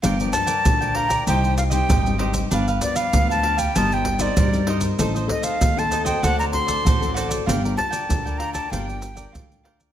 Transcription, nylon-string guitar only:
\new Staff \with { instrumentName = "Nylon-string guitar" } { \time 4/4 \key g \minor \tempo 4 = 97 << { <f bes d'>16 <f bes d'>16 <f bes d'>16 r16 <f bes d'>8. r16 <g c' ees'>8 r16 <g c' ees'>8 <g c' ees'>16 <g c' ees'>16 r16 | <f b d'>16 r16 <f b d'>8 <f b d'>8. r16 <c' ees' bes'>8 r16 <c' ees' bes'>8 <c' ees' bes'>16 <c' ees' bes'>16 r16 | <c' ees' a'>16 r16 <c' ees' a'>8 r16 <c' ees' a'>8 <c' fis' a'>8. <c' fis' a'>8 r16 <c' fis' a'>8. | <d' f' bes'>16 <d' f' bes'>16 <d' f' bes'>8 <d' f' bes'>4 <d' f' bes'>8. <d' f' bes'>8. <d' f' bes'>8 | } \\ { g,4 d4 c4 g,4 | g,4 d4 g4 g4 | a4 a4 d4 a,4 | g4 d4 g4 d4 | } >> }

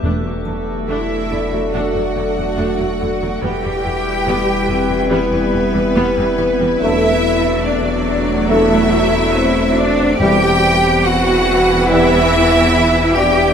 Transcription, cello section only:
\new Staff \with { instrumentName = "Cello section" } { \time 4/4 \key e \minor \tempo 4 = 71 r4 e'4 fis'2 | g'2 b2 | e'4 d'4 e'4. d'8 | g'4 fis'4 e'4. g'8 | }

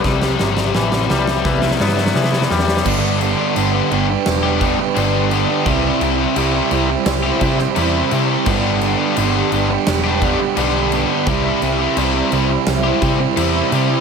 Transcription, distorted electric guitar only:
\new Staff \with { instrumentName = "Distorted electric guitar" } { \time 4/4 \key g \major \tempo 4 = 86 r1 | <g, d g b d' g'>8 <g b d' g'>8 <g, d g b d' g'>16 <g b d' g'>16 <g b d' g'>16 <g b d' g'>8 <g b d' g'>16 <g b d' g'>16 <g b d' g'>16 <g, d g b d' g'>8 <g b d' g'>16 <g b d' g'>16 | <c g c' e' g'>8 <g c' e' g'>8 <c g c' e' g'>16 <c' e' g'>16 <g c' e' g'>16 <c' e' g'>8 <c' e' g'>16 <g c' e' g'>16 <c' e' g'>16 <c g c' e' g'>8 <g c' e' g'>16 <c' e' g'>16 | <g, d g b d' g'>8 <g b d' g'>8 <g, d g b d' g'>16 <g b d' g'>16 <g b d' g'>16 <g b d' g'>8 <g b d' g'>16 <g b d' g'>16 <g b d' g'>16 <g, d g b d' g'>8 <g b d' g'>16 <g b d' g'>16 |
<c g c' e' g'>8 <g c' e' g'>8 <c g c' e' g'>16 <c' e' g'>16 <g c' e' g'>16 <c' e' g'>8 <c' e' g'>16 <g c' e' g'>16 <c' e' g'>16 <c g c' e' g'>8 <g c' e' g'>16 <c' e' g'>16 | }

